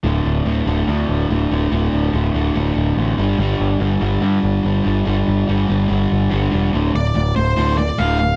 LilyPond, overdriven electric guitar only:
\new Staff \with { instrumentName = "Overdriven electric guitar" } { \clef bass \time 4/4 \key g \mixolydian \tempo 4 = 143 <d, a, d>4 <d, a, d>8 <d, a, d>8 <d, a, d>4 <d, a, d>8 <d, a, d>8 | <d, a, d>4 <d, a, d>8 <d, a, d>8 <d, a, d>4 <d, a, d>8 <g, d g>8 | <g, d g>4 <g, d g>8 <g, d g>8 <g, d g>4 <g, d g>8 <g, d g>8 | <g, d g>4 <g, d g>8 <g, d g>8 <g, d g>4 <g, d g>8 <g, d g>8 |
<d, a, d>8 <d, a,>8 <d, a,>8 <d, a,>8 <d, a, d>8 <d, a,>8 <d, a, d>8 <d, a,>8 | }